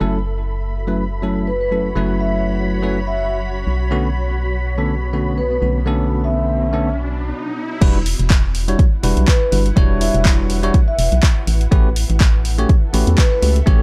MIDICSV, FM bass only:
0, 0, Header, 1, 2, 480
1, 0, Start_track
1, 0, Tempo, 487805
1, 10, Time_signature, 4, 2, 24, 8
1, 13604, End_track
2, 0, Start_track
2, 0, Title_t, "FM bass"
2, 0, Program_c, 0, 39
2, 10, Note_on_c, 0, 30, 83
2, 1909, Note_off_c, 0, 30, 0
2, 1930, Note_on_c, 0, 30, 87
2, 3589, Note_off_c, 0, 30, 0
2, 3610, Note_on_c, 0, 35, 90
2, 5509, Note_off_c, 0, 35, 0
2, 5531, Note_on_c, 0, 35, 88
2, 7211, Note_off_c, 0, 35, 0
2, 7691, Note_on_c, 0, 28, 97
2, 8016, Note_off_c, 0, 28, 0
2, 8064, Note_on_c, 0, 28, 84
2, 8613, Note_off_c, 0, 28, 0
2, 8890, Note_on_c, 0, 28, 81
2, 8994, Note_off_c, 0, 28, 0
2, 9024, Note_on_c, 0, 35, 88
2, 9107, Note_off_c, 0, 35, 0
2, 9370, Note_on_c, 0, 31, 92
2, 9563, Note_off_c, 0, 31, 0
2, 9610, Note_on_c, 0, 28, 99
2, 9936, Note_off_c, 0, 28, 0
2, 9983, Note_on_c, 0, 28, 85
2, 10532, Note_off_c, 0, 28, 0
2, 10811, Note_on_c, 0, 28, 82
2, 10914, Note_off_c, 0, 28, 0
2, 10944, Note_on_c, 0, 35, 91
2, 11027, Note_off_c, 0, 35, 0
2, 11291, Note_on_c, 0, 33, 93
2, 11483, Note_off_c, 0, 33, 0
2, 11530, Note_on_c, 0, 33, 99
2, 11856, Note_off_c, 0, 33, 0
2, 11904, Note_on_c, 0, 33, 85
2, 12453, Note_off_c, 0, 33, 0
2, 12731, Note_on_c, 0, 33, 80
2, 12834, Note_off_c, 0, 33, 0
2, 12864, Note_on_c, 0, 40, 87
2, 12947, Note_off_c, 0, 40, 0
2, 13211, Note_on_c, 0, 37, 94
2, 13403, Note_off_c, 0, 37, 0
2, 13451, Note_on_c, 0, 33, 99
2, 13604, Note_off_c, 0, 33, 0
2, 13604, End_track
0, 0, End_of_file